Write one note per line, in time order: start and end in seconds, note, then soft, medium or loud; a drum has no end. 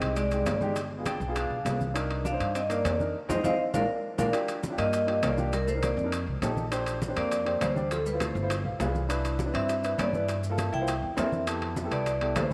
0.00 0.43 C2 medium
0.00 0.20 G#3 medium
0.00 0.14 C4 medium
0.00 0.20 D#4 medium
0.00 0.21 G4 medium
0.00 0.15 D#5 medium
0.00 high conga soft
0.00 high timbale medium
0.00 maracas soft
0.16 0.72 G#3 medium
0.16 0.72 D5 medium
0.16 high bongo medium
0.16 high conga soft
0.16 high timbale medium
0.16 maracas medium
0.31 0.52 G#3 medium
0.31 0.53 D#4 medium
0.31 0.53 G4 medium
0.31 high conga soft
0.31 high timbale medium
0.31 maracas medium
0.46 1.15 G1 medium
0.46 high bongo soft
0.46 low bongo medium
0.46 high conga medium
0.46 high timbale medium
0.46 low timbale medium
0.46 maracas medium
0.61 0.76 G#3 medium
0.61 0.76 D#4 medium
0.61 0.77 G4 medium
0.61 high bongo soft
0.61 high conga medium
0.61 maracas soft
0.76 high bongo medium
0.76 high conga soft
0.76 high timbale medium
0.76 maracas medium
0.91 high bongo soft
0.91 high conga soft
0.98 1.19 B3 medium
0.98 1.20 F4 medium
0.98 1.20 G#4 medium
1.06 1.34 D4 medium
1.06 1.33 G5 medium
1.06 high bongo medium
1.06 high conga medium
1.06 high timbale medium
1.06 low timbale soft
1.06 maracas medium
1.20 1.48 B1 medium
1.20 high conga soft
1.20 maracas soft
1.28 1.54 B3 medium
1.28 1.54 F4 medium
1.28 1.55 G#4 medium
1.35 1.91 D4 medium
1.35 1.91 F5 medium
1.35 high bongo medium
1.35 high conga soft
1.35 high timbale medium
1.35 maracas medium
1.50 1.64 B1 medium
1.50 high conga soft
1.65 2.34 C2 medium
1.65 1.86 B3 medium
1.65 1.86 F4 medium
1.65 1.87 G#4 medium
1.65 high bongo soft
1.65 low bongo medium
1.65 high conga soft
1.65 high timbale medium
1.65 low timbale medium
1.65 maracas medium
1.81 high bongo soft
1.81 high conga medium
1.81 maracas soft
1.94 2.21 D4 medium
1.94 2.21 D#4 medium
1.94 2.22 A#4 medium
1.94 high bongo medium
1.94 high conga soft
1.94 high timbale medium
1.94 maracas medium
2.11 high bongo soft
2.11 high conga soft
2.11 high timbale medium
2.25 2.53 D4 medium
2.25 2.54 F5 medium
2.25 high bongo medium
2.25 high conga medium
2.25 low timbale soft
2.25 maracas medium
2.32 2.58 D4 medium
2.32 2.59 D#4 medium
2.32 2.59 C5 medium
2.40 2.82 G2 medium
2.40 high bongo soft
2.40 high conga soft
2.40 high timbale medium
2.40 maracas soft
2.55 2.60 C4 medium
2.55 2.63 D#5 medium
2.55 high bongo medium
2.55 high conga soft
2.55 high timbale medium
2.55 maracas medium
2.69 2.97 A#3 medium
2.69 2.90 D4 medium
2.69 2.91 D#4 medium
2.69 2.91 A#4 medium
2.69 2.98 D5 medium
2.69 high conga soft
2.69 high timbale medium
2.69 maracas medium
2.84 3.12 F2 medium
2.84 high bongo soft
2.84 low bongo medium
2.84 high conga medium
2.84 high timbale medium
2.84 low timbale medium
2.84 maracas medium
2.99 3.14 D4 medium
2.99 3.15 D#4 medium
2.99 3.15 A#4 medium
2.99 high bongo soft
2.99 high conga medium
2.99 maracas soft
3.29 3.40 F2 medium
3.29 3.39 F3 medium
3.29 3.39 G#3 medium
3.29 3.39 C4 medium
3.29 3.39 D#4 loud
3.29 3.39 F4 medium
3.29 3.39 C5 medium
3.29 3.39 D#5 medium
3.29 3.39 F5 medium
3.29 low bongo medium
3.29 high conga medium
3.29 high timbale medium
3.29 maracas medium
3.44 3.55 F2 medium
3.44 3.54 F3 medium
3.44 3.54 G#3 medium
3.44 3.54 C4 medium
3.44 3.54 D#4 medium
3.44 3.54 F4 medium
3.44 3.54 C5 medium
3.44 3.54 D#5 medium
3.44 3.54 F5 medium
3.44 low bongo medium
3.44 high conga medium
3.44 high timbale medium
3.44 maracas medium
3.74 3.85 A#1 medium
3.74 3.84 G#3 medium
3.74 3.84 A#3 medium
3.74 3.84 D4 medium
3.74 3.84 F4 medium
3.74 3.84 A#4 medium
3.74 3.84 D5 medium
3.74 3.84 F5 medium
3.74 low bongo medium
3.74 high conga medium
3.74 high timbale medium
3.74 maracas medium
4.18 4.30 A#1 medium
4.18 4.28 G#3 medium
4.18 4.28 A#3 medium
4.18 4.28 D4 medium
4.18 4.28 F4 medium
4.18 4.29 A#4 medium
4.18 4.29 D5 medium
4.18 4.29 F5 medium
4.18 low bongo medium
4.18 high conga medium
4.18 high timbale medium
4.18 maracas medium
4.33 4.59 D4 medium
4.33 4.60 F4 medium
4.33 4.60 G4 medium
4.33 high bongo medium
4.33 high conga soft
4.33 high timbale medium
4.33 maracas medium
4.48 high bongo soft
4.48 high conga soft
4.48 high timbale medium
4.48 maracas medium
4.63 high bongo medium
4.63 high conga medium
4.63 low timbale soft
4.63 maracas medium
4.70 4.97 D4 medium
4.70 4.97 F4 medium
4.70 4.98 G4 medium
4.78 5.20 G2 medium
4.78 5.20 A#3 medium
4.78 5.24 D#5 loud
4.78 high bongo soft
4.78 high conga soft
4.78 high timbale medium
4.78 maracas soft
4.93 high bongo medium
4.93 high conga soft
4.93 high timbale medium
4.93 maracas medium
5.07 5.28 D4 medium
5.07 5.29 F4 medium
5.07 5.29 G4 medium
5.07 high conga soft
5.07 high timbale medium
5.23 5.92 C2 medium
5.23 5.51 A#3 medium
5.23 5.54 D5 medium
5.23 high bongo soft
5.23 low bongo medium
5.23 high conga medium
5.23 high timbale medium
5.23 low timbale medium
5.23 maracas medium
5.37 5.52 D4 medium
5.37 5.53 F4 medium
5.37 5.53 G4 medium
5.37 high bongo soft
5.37 high conga medium
5.37 maracas soft
5.53 5.67 G3 medium
5.53 5.69 A#4 medium
5.53 high bongo medium
5.53 high conga soft
5.53 high timbale medium
5.53 maracas medium
5.67 5.72 A3 medium
5.67 5.75 C5 medium
5.67 high bongo soft
5.67 high conga soft
5.67 maracas medium
5.74 5.96 D4 medium
5.74 5.96 D#4 medium
5.74 5.97 A#4 medium
5.83 6.10 A#3 medium
5.83 6.11 D5 medium
5.83 high bongo medium
5.83 high conga medium
5.83 high timbale medium
5.83 low timbale medium
5.83 maracas medium
5.97 6.25 F2 medium
5.97 high bongo soft
5.97 high conga soft
5.97 maracas soft
6.04 6.12 D4 medium
6.04 6.12 D#4 medium
6.04 6.13 A#4 medium
6.12 high bongo medium
6.12 high conga soft
6.12 high timbale medium
6.12 maracas medium
6.27 6.41 C2 medium
6.27 high conga soft
6.42 7.11 A#1 medium
6.42 6.63 D#4 medium
6.42 6.63 G4 medium
6.42 6.64 A4 medium
6.42 high bongo soft
6.42 low bongo medium
6.42 high conga soft
6.42 high timbale medium
6.42 low timbale medium
6.42 maracas medium
6.57 high bongo soft
6.57 high conga medium
6.57 maracas soft
6.71 6.98 D4 medium
6.71 6.98 G4 medium
6.71 6.98 C5 loud
6.71 high bongo medium
6.71 high conga soft
6.71 high timbale medium
6.71 maracas medium
6.86 high bongo soft
6.86 high conga soft
6.86 high timbale medium
6.86 maracas medium
7.02 high bongo medium
7.02 high conga medium
7.02 low timbale medium
7.02 maracas medium
7.08 7.35 D4 medium
7.08 7.35 G4 medium
7.08 7.36 C5 medium
7.16 7.58 F2 medium
7.16 7.58 A#3 medium
7.16 7.63 D5 loud
7.16 high bongo soft
7.16 high timbale medium
7.16 maracas soft
7.31 high bongo medium
7.31 high conga soft
7.31 high timbale medium
7.31 maracas medium
7.45 7.67 D4 medium
7.45 7.67 G4 medium
7.45 7.67 C5 medium
7.45 high conga soft
7.45 high timbale medium
7.61 8.30 D2 medium
7.61 7.89 G3 medium
7.61 7.92 C5 medium
7.61 high bongo soft
7.61 low bongo medium
7.61 high conga medium
7.61 high timbale medium
7.61 low timbale medium
7.61 maracas medium
7.76 7.91 D4 medium
7.76 7.91 G4 medium
7.76 7.91 D5 medium
7.76 high bongo soft
7.76 high conga medium
7.76 maracas soft
7.91 7.97 F3 medium
7.91 7.98 A4 medium
7.91 high bongo medium
7.91 high conga soft
7.91 high timbale medium
7.91 maracas medium
8.06 8.11 G3 medium
8.06 8.14 B4 medium
8.06 high bongo soft
8.06 high conga soft
8.06 maracas medium
8.12 8.34 E4 medium
8.12 8.34 F4 medium
8.12 8.35 C5 medium
8.20 8.48 A3 medium
8.20 8.49 C5 medium
8.20 high bongo medium
8.20 high conga medium
8.20 high timbale medium
8.20 low timbale medium
8.20 maracas medium
8.35 8.63 G1 medium
8.35 high bongo soft
8.35 high conga soft
8.35 maracas soft
8.42 8.50 E4 medium
8.42 8.50 F4 medium
8.42 8.51 C5 medium
8.50 high bongo medium
8.50 high conga soft
8.50 high timbale medium
8.50 maracas medium
8.65 8.79 B1 medium
8.65 8.79 F5 medium
8.65 high conga soft
8.79 9.49 C2 medium
8.79 9.00 F4 medium
8.79 9.01 G#4 medium
8.79 9.01 B4 medium
8.79 9.08 D5 medium
8.79 high bongo soft
8.79 low bongo medium
8.79 high conga soft
8.79 high timbale medium
8.79 low timbale medium
8.79 maracas medium
8.95 high bongo soft
8.95 high conga medium
8.95 maracas soft
9.09 9.35 D4 medium
9.09 9.36 E4 medium
9.09 9.36 B4 medium
9.09 high bongo medium
9.09 high timbale medium
9.09 maracas medium
9.25 high bongo soft
9.25 high conga soft
9.25 high timbale medium
9.25 maracas medium
9.39 high bongo medium
9.39 high conga loud
9.39 low timbale medium
9.39 maracas medium
9.46 9.72 D4 medium
9.46 9.73 E4 medium
9.46 9.73 B4 medium
9.54 9.95 G2 medium
9.54 9.95 C4 medium
9.54 9.96 E5 medium
9.54 high conga soft
9.54 high timbale medium
9.54 maracas soft
9.69 high bongo medium
9.69 high conga soft
9.69 high timbale medium
9.69 maracas medium
9.83 10.04 D4 medium
9.83 10.05 E4 medium
9.83 10.05 B4 medium
9.83 high conga soft
9.83 high timbale medium
9.83 maracas medium
9.98 10.67 G2 medium
9.98 10.26 B3 medium
9.98 10.27 D5 medium
9.98 high bongo soft
9.98 low bongo medium
9.98 high conga medium
9.98 high timbale medium
9.98 low timbale medium
9.98 maracas medium
10.13 10.28 D4 medium
10.13 10.29 E4 medium
10.13 10.29 B4 medium
10.13 high bongo soft
10.13 high conga medium
10.13 maracas soft
10.28 high bongo medium
10.28 high conga soft
10.28 high timbale medium
10.28 maracas medium
10.43 high bongo soft
10.43 high conga soft
10.43 maracas medium
10.50 10.71 A#3 medium
10.50 10.71 F4 medium
10.50 10.72 A4 medium
10.58 high bongo medium
10.58 high conga medium
10.58 high timbale medium
10.58 low timbale medium
10.58 maracas medium
10.73 11.00 C2 medium
10.73 11.14 E4 medium
10.73 11.15 G5 loud
10.73 high bongo soft
10.73 high conga soft
10.73 maracas soft
10.80 10.87 A#3 medium
10.80 10.88 F4 medium
10.80 10.88 C5 medium
10.87 high bongo medium
10.87 high conga soft
10.87 high timbale medium
10.87 maracas medium
11.03 11.16 E2 medium
11.03 high conga soft
11.17 11.86 F2 medium
11.17 11.45 C4 medium
11.17 11.38 D4 medium
11.17 11.38 E4 medium
11.17 11.39 A#4 medium
11.17 11.45 E5 medium
11.17 high bongo soft
11.17 low bongo medium
11.17 high conga soft
11.17 high timbale medium
11.17 low timbale medium
11.17 maracas medium
11.32 high bongo soft
11.32 high conga medium
11.32 maracas soft
11.47 11.73 B3 medium
11.47 11.73 E4 medium
11.47 11.73 G4 medium
11.47 11.74 A4 medium
11.47 high bongo medium
11.47 high conga soft
11.47 high timbale loud
11.47 maracas medium
11.62 high bongo soft
11.62 high conga soft
11.62 high timbale medium
11.76 high bongo medium
11.76 high conga medium
11.76 low timbale medium
11.76 maracas medium
11.83 12.10 B3 medium
11.83 12.10 E4 medium
11.83 12.10 G4 medium
11.83 12.11 A4 medium
11.91 12.33 C2 medium
11.91 12.33 B3 medium
11.91 12.33 D5 medium
11.91 high bongo soft
11.91 high conga soft
11.91 high timbale medium
11.91 maracas soft
12.06 high bongo medium
12.06 high conga soft
12.06 high timbale medium
12.06 maracas medium
12.20 12.42 B3 medium
12.20 12.42 E4 medium
12.20 12.42 G4 medium
12.20 12.43 A4 medium
12.20 high conga soft
12.20 high timbale medium
12.36 12.53 D2 medium
12.36 12.53 A3 medium
12.36 12.53 C5 medium
12.36 high bongo soft
12.36 low bongo medium
12.36 high conga medium
12.36 high timbale medium
12.36 low timbale medium
12.36 maracas medium
12.50 12.53 B3 medium